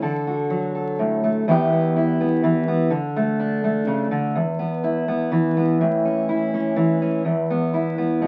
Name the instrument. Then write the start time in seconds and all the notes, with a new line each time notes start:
steel-string acoustic guitar
0.02 D3 A4
0.27 F#4
0.50 F#3
0.75 A4
0.99 A2
1.24 A3
1.48 E2 E3 B3 E4 G4
1.73 B3
1.96 E4
2.21 B3
2.44 E3
2.68 B3
2.90 D3
3.16 A3
3.40 D4
3.64 A3
3.87 C#3
4.11 D3
4.35 E2
4.59 B3
4.84 E4
5.08 B3
5.32 E3
5.57 B3
5.81 A2
6.05 C#4
6.29 E4
6.54 C#4
6.76 E3
7.02 C#4
7.25 E2
7.50 B3
7.74 E4
7.98 B3
8.22 B2